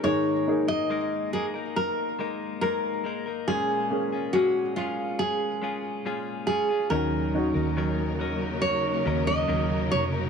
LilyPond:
<<
  \new Staff \with { instrumentName = "Nylon-string guitar" } { \time 4/4 \key ees \minor \tempo 4 = 70 des''8. ees''8. aes'8 bes'4 bes'4 | aes'4 ges'8 f'8 aes'4. aes'8 | bes'2 des''8. ees''8. des''8 | }
  \new Staff \with { instrumentName = "Clean electric guitar" } { \time 4/4 \key ees \minor <aes bes ees' bes'>8. <bes ees' bes'>16 <aes bes ees' bes'>8 <aes bes ees' bes'>16 <bes ees' bes'>8. <aes bes ees' bes'>8 <aes bes ees' bes'>8 <aes bes ees' bes'>16 <bes ees' bes'>16 | <bes, aes des' f' aes'>8. <des' f' aes'>16 <bes, aes des' aes'>8 <aes des' f' aes'>4 <aes des' f' aes'>8 <bes, aes des' f' aes'>8 <aes des' f' aes'>16 <des' f' aes'>16 | <ees ges des' ees' bes'>8. <des' ees' bes'>16 <ees ges des' ees' bes'>8 <ges des' ees' bes'>16 <des' ees' bes'>8. <ges des' ees' bes'>16 <des' ees' bes'>16 <ees ges des' ees' bes'>8 <ges des' ees' bes'>16 <des' ees' bes'>16 | }
  \new Staff \with { instrumentName = "Upright piano" } { \time 4/4 \key ees \minor <bes ees' aes'>8 <bes ees' aes'>2 r4. | <bes des' aes'>8 <bes des' aes'>2 r4. | <des' ees' ges'>8 <des' ees' ges'>2 r4. | }
  \new Staff \with { instrumentName = "Upright piano" } { \clef bass \time 4/4 \key ees \minor <aes, ees>4. r2 r8 | <bes, aes>4. r2 r8 | bes,4. r2 r8 | }
  \new Staff \with { instrumentName = "String section" } { \time 4/4 \key ees \minor r1 | r1 | <des ges bes ees' bes'>1 | }
  \new Staff \with { instrumentName = "Fingered electric bass" } { \clef bass \time 4/4 \key ees \minor r1 | r1 | ees,8. ees,4.~ ees,16 ees,8 ees,8 f,,8 | }
>>